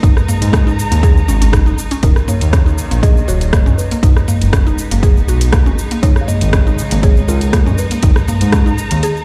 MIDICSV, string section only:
0, 0, Header, 1, 2, 480
1, 0, Start_track
1, 0, Tempo, 500000
1, 30, Time_signature, 4, 2, 24, 8
1, 8875, End_track
2, 0, Start_track
2, 0, Title_t, "String section"
2, 0, Program_c, 0, 48
2, 0, Note_on_c, 0, 63, 93
2, 36, Note_on_c, 0, 82, 91
2, 37, Note_on_c, 0, 56, 84
2, 1933, Note_off_c, 0, 82, 0
2, 1934, Note_off_c, 0, 56, 0
2, 1950, Note_on_c, 0, 58, 77
2, 1951, Note_on_c, 0, 51, 84
2, 3831, Note_off_c, 0, 63, 0
2, 3851, Note_off_c, 0, 51, 0
2, 3851, Note_off_c, 0, 58, 0
2, 3870, Note_on_c, 0, 56, 82
2, 3870, Note_on_c, 0, 59, 77
2, 3870, Note_on_c, 0, 63, 94
2, 5770, Note_off_c, 0, 59, 0
2, 5786, Note_on_c, 0, 49, 86
2, 7689, Note_off_c, 0, 49, 0
2, 7707, Note_on_c, 0, 82, 91
2, 8875, Note_off_c, 0, 56, 0
2, 8875, Note_off_c, 0, 63, 0
2, 8875, Note_off_c, 0, 82, 0
2, 8875, End_track
0, 0, End_of_file